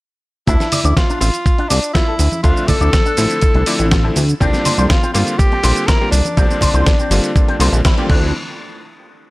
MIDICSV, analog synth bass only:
0, 0, Header, 1, 2, 480
1, 0, Start_track
1, 0, Key_signature, -1, "minor"
1, 0, Tempo, 491803
1, 464, Time_signature, 4, 2, 24, 8
1, 9078, End_track
2, 0, Start_track
2, 0, Title_t, "Analog synth bass"
2, 0, Program_c, 0, 38
2, 461, Note_on_c, 0, 38, 94
2, 551, Note_off_c, 0, 38, 0
2, 825, Note_on_c, 0, 38, 91
2, 910, Note_off_c, 0, 38, 0
2, 1182, Note_on_c, 0, 33, 78
2, 1271, Note_off_c, 0, 33, 0
2, 1663, Note_on_c, 0, 36, 84
2, 1751, Note_off_c, 0, 36, 0
2, 2141, Note_on_c, 0, 38, 80
2, 2230, Note_off_c, 0, 38, 0
2, 2381, Note_on_c, 0, 38, 96
2, 2470, Note_off_c, 0, 38, 0
2, 2744, Note_on_c, 0, 38, 89
2, 2830, Note_off_c, 0, 38, 0
2, 3103, Note_on_c, 0, 33, 78
2, 3191, Note_off_c, 0, 33, 0
2, 3462, Note_on_c, 0, 36, 95
2, 3548, Note_off_c, 0, 36, 0
2, 3701, Note_on_c, 0, 33, 91
2, 4009, Note_off_c, 0, 33, 0
2, 4063, Note_on_c, 0, 38, 95
2, 4238, Note_off_c, 0, 38, 0
2, 4303, Note_on_c, 0, 36, 96
2, 4391, Note_off_c, 0, 36, 0
2, 4666, Note_on_c, 0, 36, 92
2, 4750, Note_off_c, 0, 36, 0
2, 5023, Note_on_c, 0, 31, 81
2, 5112, Note_off_c, 0, 31, 0
2, 5502, Note_on_c, 0, 34, 84
2, 5591, Note_off_c, 0, 34, 0
2, 5976, Note_on_c, 0, 36, 80
2, 6068, Note_off_c, 0, 36, 0
2, 6221, Note_on_c, 0, 36, 92
2, 6310, Note_off_c, 0, 36, 0
2, 6578, Note_on_c, 0, 36, 90
2, 6667, Note_off_c, 0, 36, 0
2, 6933, Note_on_c, 0, 31, 80
2, 7026, Note_off_c, 0, 31, 0
2, 7414, Note_on_c, 0, 36, 99
2, 7507, Note_off_c, 0, 36, 0
2, 7540, Note_on_c, 0, 34, 100
2, 7628, Note_off_c, 0, 34, 0
2, 7903, Note_on_c, 0, 38, 91
2, 8126, Note_off_c, 0, 38, 0
2, 9078, End_track
0, 0, End_of_file